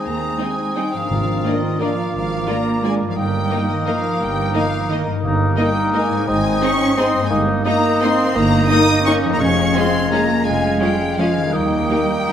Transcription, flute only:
0, 0, Header, 1, 2, 480
1, 0, Start_track
1, 0, Tempo, 346220
1, 79, Time_signature, 3, 2, 24, 8
1, 13523, Tempo, 353565
1, 14963, Tempo, 369686
1, 16924, End_track
2, 0, Start_track
2, 0, Title_t, "Flute"
2, 0, Program_c, 0, 73
2, 0, Note_on_c, 0, 87, 46
2, 2505, Note_on_c, 0, 86, 48
2, 2526, Note_off_c, 0, 87, 0
2, 4356, Note_off_c, 0, 86, 0
2, 4365, Note_on_c, 0, 87, 55
2, 6829, Note_off_c, 0, 87, 0
2, 7242, Note_on_c, 0, 87, 56
2, 7693, Note_off_c, 0, 87, 0
2, 7718, Note_on_c, 0, 87, 69
2, 8671, Note_off_c, 0, 87, 0
2, 8679, Note_on_c, 0, 87, 60
2, 9627, Note_off_c, 0, 87, 0
2, 9636, Note_on_c, 0, 87, 78
2, 10114, Note_off_c, 0, 87, 0
2, 10123, Note_on_c, 0, 87, 67
2, 10585, Note_off_c, 0, 87, 0
2, 10593, Note_on_c, 0, 87, 78
2, 11548, Note_off_c, 0, 87, 0
2, 11557, Note_on_c, 0, 87, 70
2, 12031, Note_off_c, 0, 87, 0
2, 12039, Note_on_c, 0, 87, 67
2, 13042, Note_on_c, 0, 92, 72
2, 13063, Note_off_c, 0, 87, 0
2, 14459, Note_off_c, 0, 92, 0
2, 14467, Note_on_c, 0, 92, 62
2, 15418, Note_off_c, 0, 92, 0
2, 15430, Note_on_c, 0, 92, 66
2, 15878, Note_on_c, 0, 87, 60
2, 15897, Note_off_c, 0, 92, 0
2, 16924, Note_off_c, 0, 87, 0
2, 16924, End_track
0, 0, End_of_file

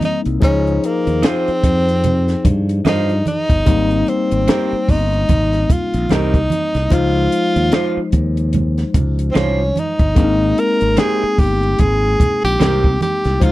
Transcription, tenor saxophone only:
0, 0, Header, 1, 2, 480
1, 0, Start_track
1, 0, Key_signature, -4, "major"
1, 0, Tempo, 811908
1, 251, Time_signature, 4, 2, 24, 8
1, 7992, End_track
2, 0, Start_track
2, 0, Title_t, "Tenor saxophone"
2, 0, Program_c, 0, 66
2, 29, Note_on_c, 0, 63, 80
2, 123, Note_off_c, 0, 63, 0
2, 263, Note_on_c, 0, 61, 95
2, 507, Note_on_c, 0, 58, 79
2, 516, Note_off_c, 0, 61, 0
2, 745, Note_on_c, 0, 60, 92
2, 754, Note_off_c, 0, 58, 0
2, 1550, Note_off_c, 0, 60, 0
2, 1706, Note_on_c, 0, 63, 91
2, 1922, Note_off_c, 0, 63, 0
2, 1939, Note_on_c, 0, 63, 93
2, 2418, Note_on_c, 0, 60, 86
2, 2427, Note_off_c, 0, 63, 0
2, 2901, Note_on_c, 0, 63, 93
2, 2909, Note_off_c, 0, 60, 0
2, 3383, Note_on_c, 0, 65, 74
2, 3392, Note_off_c, 0, 63, 0
2, 3623, Note_on_c, 0, 63, 96
2, 3632, Note_off_c, 0, 65, 0
2, 4098, Note_on_c, 0, 65, 92
2, 4106, Note_off_c, 0, 63, 0
2, 4813, Note_off_c, 0, 65, 0
2, 5506, Note_on_c, 0, 60, 67
2, 5545, Note_on_c, 0, 61, 87
2, 5554, Note_off_c, 0, 60, 0
2, 5789, Note_on_c, 0, 63, 89
2, 5798, Note_off_c, 0, 61, 0
2, 6263, Note_on_c, 0, 70, 91
2, 6272, Note_off_c, 0, 63, 0
2, 6497, Note_on_c, 0, 68, 100
2, 6506, Note_off_c, 0, 70, 0
2, 6740, Note_on_c, 0, 67, 85
2, 6749, Note_off_c, 0, 68, 0
2, 6979, Note_on_c, 0, 68, 94
2, 6988, Note_off_c, 0, 67, 0
2, 7354, Note_off_c, 0, 68, 0
2, 7359, Note_on_c, 0, 67, 96
2, 7672, Note_off_c, 0, 67, 0
2, 7700, Note_on_c, 0, 67, 90
2, 7943, Note_on_c, 0, 65, 106
2, 7952, Note_off_c, 0, 67, 0
2, 7992, Note_off_c, 0, 65, 0
2, 7992, End_track
0, 0, End_of_file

